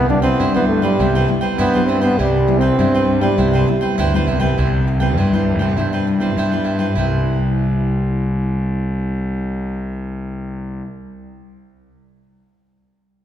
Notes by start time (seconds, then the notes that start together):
Already playing: C2 C3
0.09 G3 B3 D4 E4, muted cavaquinho stroke
0.22 C4 B4 C5 G5
0.40 G2 E4 B4 C5 G5
0.55 G3 B3 E4 B4 C5 G5
0.69 A3
0.82 G3 B3 E4 B4 C5 G5
0.99 C2 C3 G3 B3 E4 B4 C5 G5
1.15 B4 C5 G5
1.28 G3 B3 E4, muted cavaquinho stroke
1.41 B4 C5 G5
1.58 G2 B3 E4 B4 C5 G5
1.74 G3 B3 E4 B4 C5 G5
1.87 C4 E4 B4 C5 G5
2.01 B3 B4 C5 G5
2.19 C2 C3 G3 E4 B4 C5 G5
2.47 G3 B3 E4, muted cavaquinho stroke
2.58 C4 B4 G5
2.63 C5
2.78 G2 G3 B3 E4 B4 C5 G5
2.94 B4 C5 G5
3.21 G3 B3 E4 B4 C5 G5
3.38 C2 C3 G3 B3 E4 B4 C5 G5
3.53 B4 C5 G5
3.67 G3 B3 E4, muted cavaquinho stroke
3.81 B4 C5 G5
3.98 D2 G2 E4 B4 C5 G5
4.14 G3 B3 E4 B4 C5 G5
4.27 C2 E4 B4 C5 G5
4.40 G3 B3 E4 B4 C5 G5
4.57 C2 C3 E4 B4 C5 G5
4.87 muted cavaquinho stroke
5.00 G3 B3 E4 B4 C5 G5
5.17 G2 E4 B4 C5 G5
5.33 G3 B3 E4 B4 C5 G5
5.59 C2 B4 C5 G5
5.77 G2 C3 G3 B3 E4 B4 C5 G5
5.93 B4 C5 G5
6.07 muted cavaquinho stroke
6.19 G3 B3 E4 B4 C5 G5
6.36 G2 E4 B4 C5 G5
6.52 G3 B3 E4 B4 C5 G5
6.64 E4 B4 C5 G5
6.79 G3 E4 B4 C5 G5
6.95 C2 C3 G3 E4 B4 C5 G5
7.01 E4